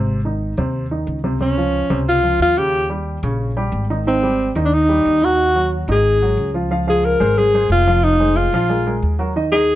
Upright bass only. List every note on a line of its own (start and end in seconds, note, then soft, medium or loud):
0.00 0.52 G#1 medium
0.57 1.04 D#2 medium
1.07 1.84 C#2 medium
1.90 2.36 C#2 medium
2.39 3.17 D#2 medium
3.23 3.69 A#1 medium
3.72 4.49 G#1 medium
4.55 5.01 D#2 medium
5.05 5.82 D#2 medium
5.88 6.34 G#1 medium
6.37 7.14 C#2 medium
7.20 7.66 G#1 medium
7.70 8.47 F1 medium
8.52 8.98 A#1 medium
9.02 9.75 D#2 medium